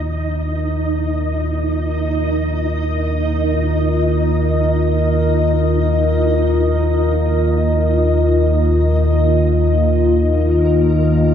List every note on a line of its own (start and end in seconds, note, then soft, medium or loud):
0.00 11.34 D#2 medium
0.00 11.34 D#3 medium
0.00 11.34 A#3 medium
0.00 10.31 D#4 medium
0.00 11.34 F4 medium
0.00 11.34 A#4 medium
0.00 10.32 D#5 medium
0.00 11.34 D#5 medium
10.27 11.34 A#3 medium
10.27 11.34 A#4 medium